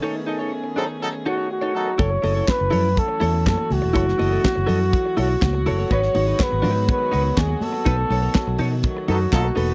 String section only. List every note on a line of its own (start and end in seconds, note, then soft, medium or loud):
0.00 1.95 D#3 medium
0.00 1.95 A3 medium
0.00 1.95 B3 medium
0.00 1.95 C#4 medium
0.00 1.98 G#4 medium
1.98 5.86 E3 medium
1.98 9.74 F#3 medium
1.98 5.86 A3 medium
1.98 3.93 C#4 medium
1.98 9.74 F#4 medium
3.96 9.74 B3 medium
5.91 7.84 D#3 medium
5.91 7.84 G#3 medium
7.88 9.74 D#3 medium
7.88 9.74 A3 medium